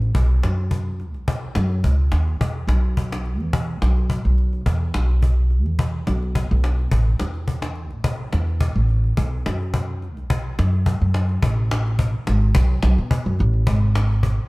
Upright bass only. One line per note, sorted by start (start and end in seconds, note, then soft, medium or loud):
0.15 0.38 B1 medium
0.44 1.15 F#2 medium
1.15 1.50 B1 medium
1.56 1.79 F#2 loud
1.84 2.10 C#2 medium
2.12 2.38 D#2 medium
2.41 2.64 E2 medium
2.67 3.41 B1 medium
3.41 3.75 E2 medium
3.82 4.18 B1 medium
4.25 4.60 B1 medium
4.66 4.90 E2 medium
4.95 5.66 B1 medium
5.66 6.00 E2 medium
6.08 6.43 B1 loud
6.51 6.85 B1 medium
6.92 7.15 A1 medium
7.21 7.92 E2 medium
7.92 8.26 A1 medium
8.33 8.69 E2 medium
8.76 9.10 A1 medium
9.18 9.41 B1 medium
9.46 10.18 F#2 medium
10.18 10.52 B1 medium
10.59 10.94 F#2 loud
11.02 11.36 F#2 medium
11.42 12.12 A1 medium
12.28 12.51 G#1 medium
12.55 12.79 B1 medium
12.83 12.95 B1 loud
12.98 13.22 B2 medium
13.26 13.37 F#2 medium
13.40 13.63 A1 loud
13.67 14.37 G#1 medium